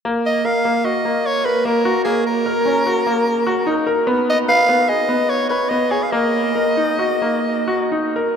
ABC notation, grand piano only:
X:1
M:5/4
L:1/8
Q:1/4=148
K:Ebm
V:1 name="Grand piano"
B,2 B B, G B,2 B B, G | B,2 B D G B,2 G E B | =B,2 =B B, ^G B,2 B B, G | B,2 B E G B,2 G E B |]